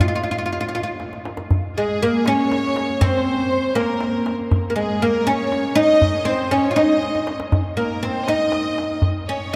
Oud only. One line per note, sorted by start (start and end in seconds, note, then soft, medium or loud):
0.01 0.07 F4 medium
0.08 0.14 F4 medium
0.15 0.22 F4 medium
0.23 0.30 F4 medium
0.31 0.37 F4 medium
0.38 0.44 F4 medium
0.46 0.51 F4 medium
0.53 0.60 F4 medium
0.61 0.67 F4 medium
0.69 0.74 F4 medium
0.75 0.82 F4 medium
0.83 0.90 F4 medium
1.78 2.02 G#3 medium
2.03 2.27 A#3 medium
2.28 3.04 C#4 medium
3.01 3.75 C4 medium
3.75 4.28 A#3 medium
4.70 4.75 A#3 medium
4.76 5.02 G#3 medium
5.02 5.28 A#3 medium
5.27 5.75 C#4 loud
5.75 6.25 D#4 loud
6.25 6.51 C4 medium
6.51 6.70 C#4 medium
6.71 6.76 F4 medium
6.76 7.29 D#4 medium
7.77 8.03 A#3 medium
8.03 8.28 C4 medium
8.28 8.99 D#4 medium
9.29 9.52 C#4 medium